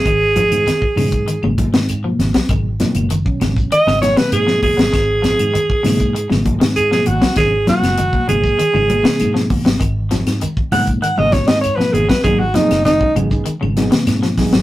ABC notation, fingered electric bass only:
X:1
M:4/4
L:1/16
Q:1/4=98
K:G#dor
V:1 name="Fingered electric bass" clef=bass
G,,,3 G,, z2 G,,3 G,,,2 G,,3 G,,, z | G,,,2 z F,,,2 z G,,,2 z G,,,2 z G,,3 G,,, | G,,,3 G,, z2 G,,3 G,,,2 G,,3 G,,, z | G,,,2 z F,,,2 z G,,,2 z G,,,2 z G,,3 G,,, |
G,,,3 G,, z2 G,,3 G,,,2 G,,3 G,,, z | G,,,2 z F,,,2 z G,,,2 z G,,,2 z G,,3 G,,, |]